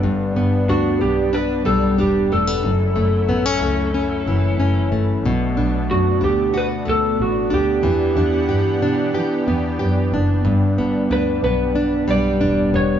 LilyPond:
<<
  \new Staff \with { instrumentName = "Electric slide guitar" } { \time 4/4 \key g \lydian \tempo 4 = 92 r4 fis'8 g'8 b'8 a'8 g'8 a'8~ | a'2.~ a'8 r8 | r4 fis'8 g'8 b'8 a'8 fis'8 g'8~ | g'2.~ g'8 r8 |
r4 b'8 b'4 d''4 cis''8 | }
  \new Staff \with { instrumentName = "Analog synth pad" } { \time 4/4 \key g \lydian <g b d'>1 | <fis a e'>1 | <b d'>1 | <e g' fis''>1 |
g1 | }
  \new Staff \with { instrumentName = "Nylon-string guitar" } { \time 4/4 \key g \lydian g,8 b8 d'8 b8 d'8 g8 d'8 a16 b16 | fis,8 a8 b16 cis'16 a8 cis'8 e8 cis'8 a8 | b,8 d'4 d'8 fis'8 a4 d'8 | e8 d'8 g'8 d'8 g'8 b8 g'8 d'8 |
g,8 b8 d'8 b8 d'8 g8 d'8 b8 | }
  \new Staff \with { instrumentName = "Double bass" } { \clef bass \time 4/4 \key g \lydian g,,8 g,,8 d,8 b,,4 b,,8 e,,8 e,,8 | fis,,8 fis,,8 a,,8 cis,4 fis,,8 fis,,8 g,,8 | b,,8 b,,8 fis,8 d,4 d,8 a,,8 d,8 | e,8 e,8 g,8 b,8 e8 e,8 fis,8 fis,,16 r16 |
g,,8 g,,8 d,8 b,,4 b,,8 e,,8 e,,8 | }
>>